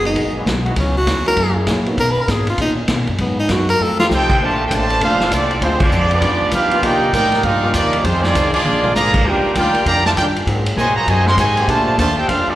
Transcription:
Already playing: F#1
0.05 G#3 A#3 B3 D#4 F#4, ride
0.16 A#1 G#3 B3 F#4 A#4, kick, ride
0.35 F#3 A#3 B3 G#4
0.46 B1 G#3 B3 F#4 A#4, kick, snare, hi-hat pedal, ride
0.65 E3 B3 D#4 F#4, ride
0.76 C#2 C#3 F#3 B3 C#4 E4, kick, ride
0.98 F#4
1.06 D#2 C#3 F#3 B3 E4, kick, snare, hi-hat pedal, ride
1.26 G#3 A#3 C#4 E4 F#4 A#4, ride
1.36 F#2 F#3 A#3 E4 G#4, kick, ride
1.56 F#3 A#3 E4 G#4
1.66 A#2 F#3 A#3 E4 G#4, kick, snare, hi-hat pedal, ride
1.86 A#3 B3 C#4 D#4 F#4, ride
1.96 B2 D#3 A#3 C#4, kick, ride
2.00 A#4
2.11 B4
2.17 muted upright bass stroke
2.21 A#4
2.28 G#2 B2 D#3 A#3 C#4 G#4, kick, snare, hi-hat pedal, ride
2.47 F4, ride
2.58 A#2 B2 D#3 A#3 C#4 D#4, kick, ride
2.88 B2 D#3 A#3 C#4, kick, snare, hi-hat pedal, ride
2.99 A#2
3.07 F#2, ride
3.18 G#2 F#3 B3 D#4, kick, ride
3.40 D#4
3.49 F#2 G#2 F#3 G#3 A#3 B3 D#4 F#4, kick, snare, hi-hat pedal, ride
3.69 A#4, ride
3.79 F2 F3 A3 C4 D#4 F4 G4 A4
3.99 F3 A3 D#4 F4 G4, snare
4.10 C2 F3 A3 C4 D#4 G4 A4 C5 G5, snare, hi-hat pedal
4.30 kick, crash
4.40 A#1 D3 F3 A3 A#3 C4 D4 F4 A4 C5 D5 A5, kick
4.66 A#3 G5
4.71 A1 D3 F3 A3 A#3 C4 D4 F4 A4 C5 D5 A5, kick, hi-hat pedal, ride
4.90 ride
5.00 F1 A3 A#3 D4 F4 A4 C5 F5, kick, ride
5.20 snare
5.31 C2 F3 A3 A#3 C4 D4 F4 A4 C5 D5, kick, hi-hat pedal, ride
5.51 ride
5.61 D2 D3 F3 G#3 C4 D4 F4 C5, kick, ride
5.80 F3 G#3 C4 D4 F4 G#4 D5, kick, crash
5.91 F2 D3 G#3 C4 F4, hi-hat pedal
6.11 F3 B3 D4 F4 G4 D5, ride
6.21 G2 F3 B3 D#4, kick, ride
6.32 F2
6.43 D2
6.51 G2 D3 F3 B3 D4 D#4 F4 G4 B4 F5, kick, hi-hat pedal, ride
6.71 D#3 A#3 D4 F4, ride
6.83 C3 F3 A#3 D#4 G4 A#4 D5 G5, kick, ride
7.13 A2 C3 F3 A#3 D#4 G4 A#4 D5 G5, kick, hi-hat pedal, ride
7.23 snare
7.32 snare, ride
7.43 G2 C3 F3 G3 A#3 D#4 F4 A#4 D5 F5, kick, ride
7.63 D#3 A#3 D4 F4
7.74 D#2 C3 F3 G3 A#3 D#4 G4 D5, kick, hi-hat pedal, ride
7.93 ride
8.04 F2 D#3 G#3 C4 D#4 F4 C5, kick, ride
8.22 D#3 G#3 C4 D4 F4 G#4 D5, snare
8.34 C2 F2 D#3 G#3 C4, kick, hi-hat pedal, ride
8.53 F3 G#3 A#3 D4 F4 G#4 D5, muted upright bass stroke, ride
8.64 A#1 A#2 F3 G#3 D4, high tom
8.83 D3 G#3 A#3 F4, mid tom
8.94 G#1 A#2 D3 F3 G#3 A#3 D4 G#4 D5 F5 A#5, snare, hi-hat pedal
9.14 kick, crash
9.25 D#2 D#3 G3 A#3 D4 F4 G4 A#4 D5 G5, kick
9.45 muted upright bass stroke
9.55 D2 D#3 G3 A#3 D4 F4 G4 A#4 D5 G5, kick, hi-hat pedal, ride
9.74 ride
9.86 F2 D3 D#3 G3 A#3 D4 F4 G4 D5 F5 A#5, kick, ride
10.04 D#3 G3 A3 D4 F4 A#4 D5 A5, snare
10.16 G2 D#3 G3 A#3 D4 F4 G4 A#4 D5 G5, kick, hi-hat pedal, ride
10.36 ride
10.46 G#2 F#3 G#3 A#3 C4 F#4 G#4 A#4, kick, ride
10.66 ride
10.76 A#2 C3 D#3 G#3 C4 F#4 A#4 C5 D#5 G#5, kick, hi-hat pedal
10.87 G#2
10.95 F#2 D#3 F#3 A#3 F#4 C5 D#5 A#5
11.06 F#2 C3 D#3 G#3 C4 F#4 A#4 C5 D#5 G#5, kick, ride
11.26 D#3 F#3 C4 A#4 D#5 F#5 C6, snare
11.37 G#2 C3 D#3 G#3 C4 F#4 A#4 C5 D#5 G#5, kick, hi-hat pedal, ride
11.57 D3 A#3 C4 G4, ride
11.67 A#2 D3 F3 A3 A#3 D4 F4 A4 C5 D5 A5, kick, ride
11.98 D#2 D3 F3 A3 A#3 D4 F4 A4 C5 D5 A5, kick, hi-hat pedal, ride
12.17 D#4 G4 A4 C5 G5
12.28 F2 A3 A#3 D4 F4 A4 C5 F5, kick, ride
12.47 F3 A3 C4 D4 F4 A4 D5, muted upright bass stroke

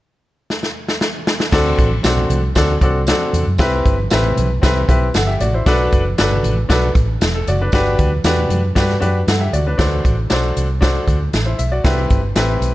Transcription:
0.50 snare
0.63 snare
0.88 snare
1.01 snare
1.27 snare
1.40 snare
1.52 D2 C4 D4 F#4 A4, kick, snare, crash, tambourine, muted conga
1.78 A1, kick, closed hi-hat, muted conga
1.91 high conga
2.03 B1 C4 D4 F#4 A4, snare, closed hi-hat, tambourine
2.17 low conga
2.30 C2, closed hi-hat, muted conga, high conga, low conga
2.55 D2 C4 D4 F#4 A4, kick, snare, closed hi-hat, tambourine, muted conga
2.81 C2 C4 D4 F#4 A4, kick, closed hi-hat
3.07 C4 D4 F#4 A4, snare, closed hi-hat, tambourine, high conga
3.33 E2, closed hi-hat, high conga, low conga
3.47 F#2
3.58 C2 C4 E4 G4 B4, kick, snare, closed hi-hat, tambourine
3.86 G1, kick, closed hi-hat, muted conga
3.98 high conga
4.10 A1 C4 E4 G4 B4, snare, closed hi-hat, tambourine, muted conga
4.23 low conga
4.37 B1, closed hi-hat, muted conga, high conga, low conga
4.62 C2 C4 E4 G4 B4, kick, snare, closed hi-hat, tambourine, muted conga
4.88 B1 C4 E4 G4 B4, kick, closed hi-hat, muted conga
5.14 G1 A4 F#5, snare, closed hi-hat, tambourine, high conga
5.27 G4 E5
5.40 A1 F#4 D5, closed hi-hat, muted conga, high conga, low conga
5.54 E4 C5
5.66 B1 D4 F#4 A4 B4, kick, snare, closed hi-hat, tambourine, muted conga
5.92 F#1, kick, closed hi-hat
6.05 high conga
6.18 G1 D4 F#4 A4 B4, snare, closed hi-hat, tambourine
6.31 low conga
6.43 A1, closed hi-hat, muted conga, high conga, low conga
6.69 B1 D4 F#4 A4 B4, kick, snare, closed hi-hat, tambourine, muted conga
6.95 A1, kick, closed hi-hat, muted conga
7.21 E1, snare, closed hi-hat, tambourine, high conga
7.34 A4
7.47 F#1 F#4 D5, closed hi-hat, muted conga, high conga, low conga
7.61 D4 B4
7.72 G1 D4 F#4 G4 B4, kick, snare, closed hi-hat, tambourine
7.99 D2, kick, closed hi-hat, muted conga
8.11 high conga
8.24 E2 D4 F#4 G4 B4, snare, closed hi-hat, tambourine, muted conga
8.37 low conga
8.49 F#2, closed hi-hat, high conga, low conga
8.75 G2 D4 F#4 G4 B4, kick, snare, closed hi-hat, tambourine, muted conga
8.90 snare
9.00 F#2 D4 F#4 G4 B4, closed hi-hat, muted conga
9.27 G2 A4 F#5, snare, closed hi-hat, tambourine, high conga
9.41 G4 E5
9.53 D2 F#4 D5, closed hi-hat, muted conga, low conga
9.67 D4 B4
9.78 D2 D4 F#4 A4 C5, kick, snare, closed hi-hat, tambourine
10.05 A1, kick, closed hi-hat
10.30 B1 D4 F#4 A4 C5, snare, closed hi-hat, tambourine
10.57 C2, closed hi-hat
10.81 D4 F#4 A4 C5, kick, snare, closed hi-hat, tambourine
11.07 D2, kick, closed hi-hat
11.33 A1, snare, closed hi-hat, tambourine
11.45 E4 C5
11.58 B1 E5, closed hi-hat
11.72 F#4 D5
11.84 C2 C4 E4 G4 B4, kick, snare, closed hi-hat, tambourine
12.10 G1, kick, closed hi-hat
12.35 A1 C4 E4 G4 B4, snare, closed hi-hat, tambourine
12.61 B1, closed hi-hat

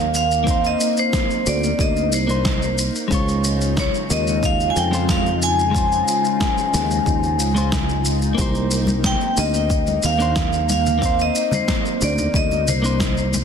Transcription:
Already playing: D#2 A#3 D#4 F5
0.15 F5, shaker
0.32 shaker
0.44 A#3 C4, kick, shaker
0.48 D#4 C5
0.64 D#5, shaker
0.81 shaker
0.97 C5, shaker
1.13 kick, snare, shaker
1.30 shaker
1.46 D2 D5, shaker
1.64 shaker
1.79 D2 D#5, kick, shaker
1.96 shaker
2.13 C2 C5, shaker
2.27 A#3 D4 D#4 C5, shaker
2.45 kick, snare, shaker
2.62 shaker
2.78 shaker
2.95 shaker
3.08 C#2 C#3 G#3 C#4 F4, kick, shaker
3.13 F4 C#5
3.28 shaker
3.44 shaker
3.61 shaker
3.77 C#5, kick, snare, shaker
3.94 shaker
4.10 D#2 D#5, shaker
4.27 shaker
4.43 F5, kick, shaker
4.60 shaker
4.70 G#5
4.76 F2 G5, shaker
4.91 G#3 C#4 F4 C5, shaker
5.09 F5, kick, snare, shaker
5.26 shaker
5.42 G#5, shaker
5.59 shaker
5.71 G#3 C#4, kick
5.76 F4 C5, shaker
5.92 shaker
6.08 shaker
6.25 shaker
6.40 kick, snare, shaker
6.58 shaker
6.74 D#2, snare, shaker
6.91 shaker
7.06 D#2, kick, shaker
7.23 shaker
7.40 C#2, shaker
7.55 G#3 C#4 F4 C5, shaker
7.72 kick, snare, shaker
7.89 shaker
8.05 shaker
8.22 shaker
8.35 C2 A#3 C4, kick, shaker
8.39 D#4 C5
8.55 shaker
8.71 shaker
8.87 high conga, shaker
9.04 G5, kick, snare, shaker
9.21 shaker
9.37 D2 D#5, shaker
9.54 shaker
9.70 kick, shaker
9.87 high conga, shaker
10.03 D#2 F5, shaker
10.19 A#3 D4 D#4 C5, shaker
10.36 kick, snare, shaker
10.53 shaker
10.69 F5, high conga, shaker
10.86 low conga, shaker
10.99 A#3 C4, kick
11.03 D#4 C5, shaker
11.19 D#5, shaker
11.36 shaker
11.51 C5, high conga, low conga, shaker
11.68 kick, snare, shaker
11.86 shaker
12.01 D2 D5, shaker
12.18 low conga, shaker
12.34 D2 D#5, kick, shaker
12.51 high conga, shaker
12.68 C2 C5, low conga, shaker
12.82 A#3 D4 D#4 C5, shaker
13.00 kick, snare, shaker
13.17 shaker
13.34 high conga, shaker

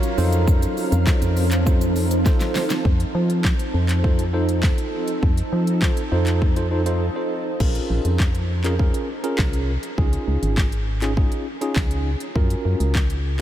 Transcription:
Already playing: F#3 C#4 F4 F#4 A#4 C#5 F5
0.03 closed hi-hat, shaker
0.18 F2 F3 C4 D#4 F4 A4 C5, open hi-hat, shaker
0.32 closed hi-hat, shaker
0.47 kick, shaker
0.62 closed hi-hat, shaker
0.77 open hi-hat, shaker
0.92 F2, closed hi-hat, shaker
1.07 D#4 F4 A4 C5, kick, snare, clap, shaker
1.22 F2, closed hi-hat, shaker
1.37 open hi-hat, shaker
1.51 clap, closed hi-hat, shaker
1.66 D#4 F4 A4 C5, kick, shaker
1.81 closed hi-hat, shaker
1.96 open hi-hat, shaker
2.11 closed hi-hat, shaker
2.25 D#4 F4 A4 C5, kick, snare, shaker
2.41 snare, closed hi-hat, shaker
2.56 snare, open hi-hat, shaker
2.70 snare, closed hi-hat, shaker
2.85 F2 F3 C4 D#4 A4, kick
3.00 closed hi-hat
3.15 F3
3.30 closed hi-hat
3.44 kick, snare, clap
3.59 closed hi-hat
3.74 F2
3.89 clap, closed hi-hat
4.04 D#4 F4 A4 C5, kick
4.19 closed hi-hat
4.33 D#4 F4 A4 C5
4.49 closed hi-hat
4.63 kick, snare, clap
4.78 closed hi-hat
5.08 closed hi-hat
5.23 F2, kick
5.37 closed hi-hat
5.52 F3
5.67 closed hi-hat
5.82 D#4 F4 A4 C5, kick, snare, clap
5.97 closed hi-hat
6.12 F2 D#4 F4 A4 C5
6.27 clap, closed hi-hat
6.42 kick
6.56 D#4 F4 A4 C5, closed hi-hat
6.71 D#4 F4 A4 C5
6.86 D#4 F4 A4 C5, closed hi-hat
7.16 D#4 F4 A4 C5
7.60 A#1 C#4 F4 G#4 A#4, kick, crash
7.75 closed hi-hat
7.90 A#1
8.05 F2, closed hi-hat
8.20 kick, snare, clap
8.35 closed hi-hat
8.64 C#4 F4 G#4 A#4, clap, closed hi-hat
8.79 C#4 F4 G#4 A#4, kick
8.94 closed hi-hat
9.23 C#4 F4 G#4 A#4, closed hi-hat
9.38 C2, kick, snare, clap
9.53 closed hi-hat
9.83 closed hi-hat
9.98 C#2 C#4 D#4 F4 G#4, kick
10.13 closed hi-hat
10.28 C#2
10.43 G#1, closed hi-hat
10.57 kick, snare, clap
10.72 closed hi-hat
11.02 C#4 D#4 F4 G#4, clap, closed hi-hat
11.17 C#4 D#4 F4 G#4, kick
11.32 closed hi-hat
11.61 C#4 D#4 F4 G#4, closed hi-hat
11.76 C#2, kick, snare, clap
11.91 closed hi-hat
12.20 closed hi-hat
12.35 F#2 C#4 F4 F#4 A#4, kick
12.50 closed hi-hat
12.65 F#2
12.80 C#2, closed hi-hat
12.95 kick, snare, clap
13.10 closed hi-hat

